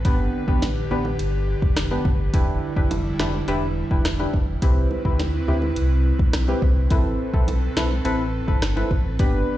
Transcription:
Already playing: B4
0.05 G1 D3 B3 D4 G4 B4, kick, closed hi-hat
0.48 A1 B3 D4 G4 B4, kick
0.62 snare, closed hi-hat, high bongo
0.91 A1 B3 D4 G4 B4, low bongo
1.05 high bongo
1.19 G1, closed hi-hat
1.62 F1, kick
1.76 cross-stick, snare, closed hi-hat
1.91 B3 D4 G4 B4, high bongo
2.05 G1, kick, low bongo
2.34 E1 G3 D4 E4 G4 B4, kick, closed hi-hat
2.76 F1 D4 E4 G4 B4, kick
2.91 closed hi-hat, high bongo
3.19 F1 D4 E4 G4 B4, cross-stick, snare, low bongo
3.33 high bongo
3.48 E1 D4 E4 G4 B4, closed hi-hat
3.91 E1 D4 E4 G4 B4, kick
4.05 cross-stick, snare, closed hi-hat
4.19 D4 E4 G4 B4, high bongo
4.33 F1, kick, low bongo
4.62 C2 C4 E4 G4 B4, kick, closed hi-hat
4.91 high bongo
5.05 D2 C4 E4 G4 B4, kick
5.19 snare, closed hi-hat, high bongo
5.48 D2 C4 E4 G4 B4, low bongo
5.62 high bongo
5.76 C2, closed hi-hat
6.19 B1, kick
6.33 cross-stick, snare, closed hi-hat
6.48 C4 E4 G4 B4, high bongo
6.62 C2, kick, low bongo
6.90 A1 C4 E4 A4 B4, kick, closed hi-hat
7.33 B1 C4 E4 A4 B4, kick
7.48 closed hi-hat, high bongo
7.76 B1 C4 E4 A4 B4, cross-stick, snare, low bongo
7.91 high bongo
8.05 A1 C4 E4 A4 B4, closed hi-hat
8.47 G1 C4 E4 A4 B4, kick
8.62 cross-stick, snare, closed hi-hat
8.76 C4 E4 A4 B4, high bongo
8.91 A1, kick, low bongo
9.19 G1 D3 B3 D4 G4 B4, kick, closed hi-hat

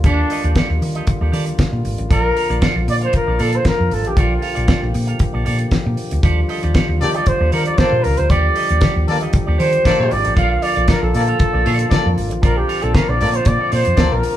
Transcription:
Already playing: D3 G3 F4
0.04 D#2 A#3 D4 G4 A4 D5, kick, closed hi-hat
0.30 G4 A4 D#5, open hi-hat
0.44 D#2 G4 A4 D5, closed hi-hat
0.55 G4 A4 D5, kick, snare, closed hi-hat
0.70 D#2, muted clean electric guitar stroke
0.82 D#3, muted clean electric guitar stroke, open hi-hat
0.95 G4 A4 D#5, closed hi-hat
1.07 muted clean electric guitar stroke, kick, closed hi-hat
1.21 D#2 G4 A4 D5
1.32 D#3 G4 A4 D5, open hi-hat
1.46 muted clean electric guitar stroke, closed hi-hat
1.59 muted clean electric guitar stroke, kick, snare, closed hi-hat
1.72 A#2, muted clean electric guitar stroke
1.85 G#1, open hi-hat
1.98 A1, muted clean electric guitar stroke, closed hi-hat
2.10 A#1 F3 F4 A4 A#4 D5, kick, closed hi-hat
2.35 F4 A4 F5, open hi-hat
2.50 A#1 F4 A4 D5, closed hi-hat
2.61 F4 A4 D5, kick, snare, closed hi-hat
2.76 A#1, muted clean electric guitar stroke
2.88 A#2 D5, muted clean electric guitar stroke, open hi-hat
3.01 F4 A4 C5 F5, closed hi-hat
3.13 A#4, muted clean electric guitar stroke, kick, closed hi-hat
3.27 A#1 F4 A4 D5
3.39 A#2 F4 A4 D5, open hi-hat
3.52 C5, muted clean electric guitar stroke, closed hi-hat
3.65 A#4, muted clean electric guitar stroke, kick, snare, closed hi-hat
3.77 F2, muted clean electric guitar stroke
3.91 G#1 A4, open hi-hat
4.04 A1 G4, muted clean electric guitar stroke, closed hi-hat
4.16 A#1 F4 G4 A4 D5, kick, closed hi-hat
4.20 F4
4.41 F4 A4 F5, open hi-hat
4.55 A#1 F4 A4 D5, closed hi-hat
4.67 F4 A4 D5, kick, snare, closed hi-hat
4.81 A#1, muted clean electric guitar stroke
4.94 A#2, muted clean electric guitar stroke, open hi-hat
5.07 F4 A4 F5, closed hi-hat
5.19 muted clean electric guitar stroke, kick, closed hi-hat
5.33 A#1 F4 A4 D5
5.45 A#2 F4 A4 D5, open hi-hat
5.59 muted clean electric guitar stroke, closed hi-hat
5.71 muted clean electric guitar stroke, kick, snare, closed hi-hat
5.86 A#2, muted clean electric guitar stroke
5.97 open hi-hat
6.11 D2, muted clean electric guitar stroke, closed hi-hat
6.22 D#2 G3 F4 G4 A4 D5, kick, closed hi-hat
6.49 G4 A4 D#5, open hi-hat
6.63 D#2 G4 A4 D5, closed hi-hat
6.74 G4 A4 D5, kick, snare, closed hi-hat
6.88 D#2, muted clean electric guitar stroke
7.01 D#3 A#3 G4 A4 D5, muted clean electric guitar stroke, open hi-hat
7.14 G4 A4 D5 D#5, closed hi-hat
7.26 C5, muted clean electric guitar stroke, kick, closed hi-hat
7.40 D#2 G4 A4 D5
7.52 D#3 G4 A4 A#4 D5, open hi-hat
7.66 D5, muted clean electric guitar stroke, closed hi-hat
7.78 A#3 A4 C5 D5, muted clean electric guitar stroke, kick, snare, closed hi-hat
7.92 A#2, muted clean electric guitar stroke
8.03 C#2 A#4, open hi-hat
8.17 D2 C5, muted clean electric guitar stroke, closed hi-hat
8.30 D#2 G4 A4 D5, kick, closed hi-hat
8.55 G4 A4 D#5, open hi-hat
8.69 D#2 G4 A4 D5, closed hi-hat
8.81 G4 A4 D5, kick, snare, closed hi-hat
8.96 D#2, muted clean electric guitar stroke
9.07 D#3 A#3 A4 D5, muted clean electric guitar stroke, open hi-hat
9.21 G4 A4 D#5, closed hi-hat
9.33 muted clean electric guitar stroke, kick, closed hi-hat
9.47 D#2 G4 A4 D5
9.58 D#3 G4 A4 C5 D5, open hi-hat
9.72 muted clean electric guitar stroke, closed hi-hat
9.84 A#3 G4 A4 D5, kick, snare, closed hi-hat
9.98 A#2, muted clean electric guitar stroke
10.11 G#1 D5, muted clean electric guitar stroke, open hi-hat
10.24 A1 G4 A4 D5, closed hi-hat
10.36 A#1 D3 A#3 F4 A4 D5 F5, kick, closed hi-hat
10.51 F5
10.62 F4 A4 D5 F5, open hi-hat
10.76 A#1 F4 A4 D5, closed hi-hat
10.88 F4 A4 A#4 D5, kick, snare, closed hi-hat
11.02 A#1 A4, muted clean electric guitar stroke
11.13 A#2 A#3 A4 D5, muted clean electric guitar stroke, open hi-hat
11.27 F4 A4 F5, closed hi-hat
11.39 muted clean electric guitar stroke, kick, closed hi-hat
11.53 A#1 F4 A4 D5
11.65 A#2 F4 A4 D5, open hi-hat
11.79 muted clean electric guitar stroke, closed hi-hat
11.91 A#3 A4 D5, muted clean electric guitar stroke, kick, snare, closed hi-hat
12.05 F2, muted clean electric guitar stroke
12.18 G#1, open hi-hat
12.30 A1, muted clean electric guitar stroke, closed hi-hat
12.41 A#1 C4 F4 A4 A#4 D5, kick, closed hi-hat
12.57 G4
12.67 F4 A4 F5, open hi-hat
12.81 A#1 F4 A4 D5, closed hi-hat
12.94 F4 A4 A#4 D5, kick, snare, closed hi-hat
13.07 A#1 D5, muted clean electric guitar stroke
13.20 A#2 A#3 A4 D5, muted clean electric guitar stroke, open hi-hat
13.33 F4 A4 C5 F5, closed hi-hat
13.45 A#2 D5, muted clean electric guitar stroke, kick, closed hi-hat
13.60 F4 A4 D5
13.72 A#2 F4 A4 C5 D5, open hi-hat
13.85 F2, muted clean electric guitar stroke, closed hi-hat
13.97 D2 A#3 A4 D5, muted clean electric guitar stroke, kick, snare, closed hi-hat
14.11 A#1 A#4, muted clean electric guitar stroke
14.23 open hi-hat

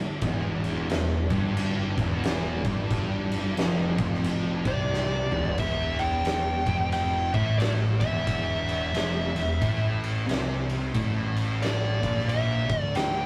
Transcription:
0.21 E1 E2, kick, crash
0.64 crash
0.88 E1 E2, snare, crash
1.30 G1 G2, kick, crash
1.57 crash
1.98 E1 E2, kick, crash
2.23 snare, crash
2.64 G1 G2, kick, crash
2.91 kick, crash
3.31 crash
3.57 F1 F2, snare, crash
3.98 F1 F2, kick, crash
4.14 snare
4.24 crash
4.65 C2 C3 D5, kick, crash
4.94 snare
5.32 E1 E2, mid tom
5.45 floor tom
5.57 E1 E2 E5, kick, ride
5.99 G5, ride
6.25 snare, ride
6.66 F1 F2, kick, ride
6.92 G5, ride
7.33 A1 A2 E5, kick, ride
7.58 D5, snare, ride
8.00 E1 E2 E5, kick, ride
8.27 kick, ride
8.69 ride
8.93 F1 F2, snare, ride
9.35 E1 E2, ride
9.60 A1 A2, kick, ride
10.04 ride
10.27 C2 C3, snare, ride
10.70 ride
10.94 A1 A2, kick, ride
11.36 ride
11.62 D5, snare, ride
12.02 A#1 A#2, kick, ride
12.19 snare
12.29 E5, ride
12.69 D2 D3, kick, ride
12.81 D5
12.95 G5, snare, ride

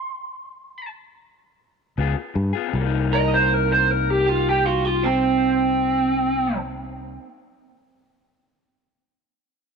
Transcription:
Already playing: C6
1.98 C#2 C#3 B3 F4 G#4
2.16 muted clean electric guitar stroke
2.34 G2, muted clean electric guitar stroke
2.53 B3 F4 G#4
2.67 C3
2.73 C2 G3
2.81 A#3
2.86 D#4
3.13 A#4 D#5
3.34 C5
3.54 A#4
3.73 C5
3.91 A#4
4.10 G4
4.27 F4 G4
4.49 G4
4.66 F4 F#4
4.85 F4 G4
5.03 C4

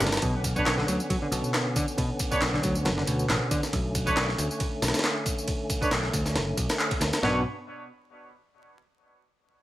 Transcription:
Already playing: G3 A3 C#4
0.00 G1 C#3, snare, ride, tambourine
0.07 snare, ride
0.12 snare, ride, tambourine
0.17 snare, ride
0.22 B1 B2 D3 B3 C#4, kick, ride, tambourine
0.44 kick, ride, tambourine
0.56 D4 B4 C#5, kick, tambourine
0.66 B1, snare, clap, ride, tambourine
0.78 D3, snare
0.88 D2 F#3, ride, tambourine
1.00 tambourine
1.10 F#3, kick, ride, tambourine
1.22 D3
1.32 B1 B2, ride, tambourine
1.44 tambourine
1.54 snare, clap, ride, tambourine
1.76 D3, kick, ride, tambourine
1.88 tambourine
1.97 B2, kick, ride, tambourine
2.19 kick, ride, tambourine
2.31 D4 B4 C#5, muted picked electric bass stroke, kick, tambourine
2.41 B1, snare, clap, ride, tambourine
2.54 D3, snare
2.63 D2 F#3, kick, ride, tambourine
2.75 tambourine
2.85 F#1 F#3, snare, ride, tambourine
2.97 D3, snare
3.07 D2 B2, ride, tambourine
3.19 tambourine
3.29 A1, snare, clap, ride, tambourine
3.51 D3, kick, ride, tambourine
3.63 snare, tambourine
3.73 B1 A3, kick, ride, tambourine
3.95 kick, ride, tambourine
4.07 D4 B4 C#5, kick, tambourine
4.17 B1, snare, clap, ride, tambourine
4.29 snare
4.38 D2, ride, tambourine
4.51 tambourine
4.60 kick, ride, tambourine
4.82 B1, snare, ride, tambourine
4.88 snare, ride
4.94 snare, ride, tambourine
4.99 snare, ride
5.04 snare, clap, ride, tambourine
5.26 kick, ride, tambourine
5.38 tambourine
5.48 kick, ride, tambourine
5.70 kick, ride, tambourine
5.82 D4 B4 C#5, muted picked electric bass stroke, kick, tambourine
5.91 B1, snare, clap, ride, tambourine
6.04 snare
6.13 D2, kick, ride, tambourine
6.26 snare, tambourine
6.35 F#1, snare, ride, tambourine
6.57 B1, kick, ride, tambourine
6.69 snare, ride, tambourine
6.79 clap, tambourine
6.91 kick, ride
7.01 D2, snare, ride, tambourine
7.13 snare, ride, tambourine
7.22 B1 B2 B3 C#4 D4 F#4 B4 C#5, snare, floor tom

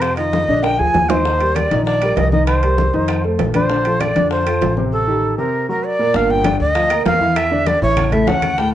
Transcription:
Already playing: F2 C3 C4 C5
0.01 C5, high bongo, high conga, high timbale, claves
0.17 D#3 D#4 F4 D#5, high conga, high timbale
0.33 high bongo, high conga, low timbale
0.48 A#1 D3 D4 D5, high bongo
0.63 G5, high bongo, high conga, high timbale, claves
0.79 D2 F3 F4 G#4 G#5, high bongo, high conga
0.94 D#2, high bongo, low bongo, high conga, low timbale
1.10 D#3 D#4 C5 D#5, high bongo, high conga, low timbale, claves
1.25 D#3 D#4 D#5, high bongo, high conga
1.40 G3 G4 A#4, high conga, high timbale
1.55 D5, high bongo, high conga, high timbale, low timbale, claves
1.71 A#1 D#3 D#4 D#5, high bongo, high conga, high timbale
1.85 D5, high bongo, high conga
2.01 G3 G4 A#4, high bongo, high conga, high timbale, claves
2.16 C2 D#5, high bongo, low bongo, high conga, high timbale, low timbale
2.32 D#3 D#4 D#5, high bongo, high conga
2.46 C5, high bongo, high conga, high timbale, claves
2.63 G3 G4 A#4, high conga, high timbale
2.78 high bongo, high conga, low timbale
2.93 F2 D#3 D#4 D#5, high bongo
3.08 high bongo, high conga, high timbale, claves
3.24 A3 A4 C5, high bongo, high conga
3.39 A#1, high bongo, low bongo, high conga, high timbale, low timbale
3.54 D3 D4 C5 D5, high bongo, high conga, high timbale, claves
3.70 D3 D4 D5, high bongo
3.85 F3 F4 A4, high conga, high timbale
4.00 D5, high bongo, high conga, high timbale, low timbale, claves
4.16 F2 D3 D4 D5, high bongo, high conga, high timbale
4.31 C5, high bongo, high conga
4.46 F3 F4 A4, high bongo, high conga, high timbale, claves
4.61 A1, high bongo, low bongo, high conga, high timbale, low timbale
4.76 C3 C4 C5, high bongo, high conga
4.92 A4
5.07 D#3 D#4 G4
5.38 C3 C4 A#4 C5
5.69 F#3 F#4 A#4
5.86 D5
5.99 A#2 A#3 A#4
6.14 G1 A#2 A#3 A#4 F5, high bongo, high conga
6.30 G5, high bongo, high conga
6.44 D3 D4 D5, high bongo, high conga, high timbale, low timbale, claves
6.60 D2 D#5, high bongo, high conga
6.75 F3 F4 F5, high bongo, high conga, high timbale
6.90 A#3 A#4 A#5, high conga, high timbale, claves
7.06 E2 F5, high bongo, low bongo, high conga, low timbale
7.21 E3 E4 E5, high bongo, high conga
7.36 E5, high bongo, high conga, high timbale, claves
7.51 D3 D4 D5, high conga
7.67 D5, high bongo, high conga, high timbale, low timbale
7.82 A1 E3 E4 C#5 E5, high bongo, high conga
7.97 high bongo, high conga, low conga, high timbale, claves
8.12 A2 A3 A4 E5, high bongo, high conga, low conga, high timbale
8.27 D2 C#3 C#4 C#5 F#5, high bongo, low bongo, high conga, low timbale
8.42 high bongo, high conga, high timbale, claves
8.58 A2 A3 A4 G5, high bongo, high conga

